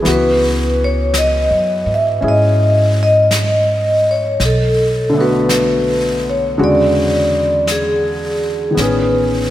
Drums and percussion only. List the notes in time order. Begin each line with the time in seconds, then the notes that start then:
0.05 brush sweep, snare
1.14 brush sweep, snare, hi-hat pedal
2.23 brush sweep
3.31 brush sweep, snare, hi-hat pedal
4.40 brush sweep, snare
5.49 brush sweep, snare, hi-hat pedal
6.59 brush sweep
7.67 brush sweep, snare, hi-hat pedal
8.77 brush sweep, snare